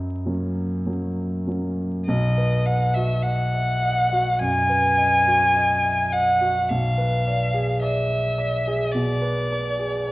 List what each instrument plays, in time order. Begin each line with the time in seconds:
Already playing: grand piano F#2 D#5 B5 D#6
0.25 grand piano F#3 A#3 C#4
0.86 grand piano F#3 A#3 C#4
1.47 grand piano F#3 A#3 C#4
2.06 grand piano B1, violin D#5
2.38 grand piano B4
2.66 grand piano D#5, violin F#5
2.94 grand piano F#4, violin E5
3.23 grand piano D#5, violin F#5
3.54 grand piano E5
3.83 grand piano D#5
4.13 grand piano F#4
4.39 grand piano F#2, violin G#5
4.69 grand piano B4
4.98 grand piano D#5
5.27 grand piano F#4
5.56 grand piano D#5
5.85 grand piano E5
6.12 grand piano D#5, violin F#5
6.41 grand piano F#4
6.69 grand piano B1, violin F5
6.98 grand piano B4
7.27 grand piano D5
7.54 grand piano G#4
7.82 grand piano D5, violin E5
8.10 grand piano E5
8.38 grand piano D5
8.67 grand piano G#4
8.92 grand piano B2, violin D5
9.22 grand piano B4
9.52 grand piano D5
9.79 grand piano G#4
10.07 grand piano D5